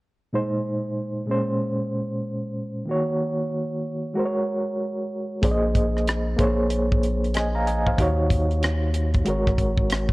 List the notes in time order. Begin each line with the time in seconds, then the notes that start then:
0.32 A#2 G#3 D#4 C5
1.26 A#2 G#3 C#4
1.31 C5
2.86 D#3 A#3 F#4
2.91 C#5
4.14 G#3 F#4 A#4
4.19 C5
4.26 C#5
5.42 A#1 A#3 G#4 C5 D5, kick, closed hi-hat
5.51 D#5
5.75 kick, closed hi-hat
5.97 cross-stick
6.07 cross-stick, closed hi-hat
6.36 A#1 A#3 G#4 C5, kick, closed hi-hat
6.42 C#5
6.70 closed hi-hat
6.92 kick
7.03 closed hi-hat
7.24 closed hi-hat
7.34 D#5 G#5, cross-stick, closed hi-hat
7.55 F5 A#5
7.67 D#5 G#5, closed hi-hat
7.87 C5 F5, kick
7.97 D#2 D#3 D#4 F#4, kick, closed hi-hat
8.02 C#5
8.30 kick, closed hi-hat
8.51 closed hi-hat
8.63 cross-stick, closed hi-hat
8.94 closed hi-hat
9.14 kick, closed hi-hat
9.25 G#1 G#3 F#4 A#4, closed hi-hat
9.30 C#5
9.47 kick, cross-stick
9.58 kick, closed hi-hat
9.78 kick
9.90 cross-stick, closed hi-hat
10.09 kick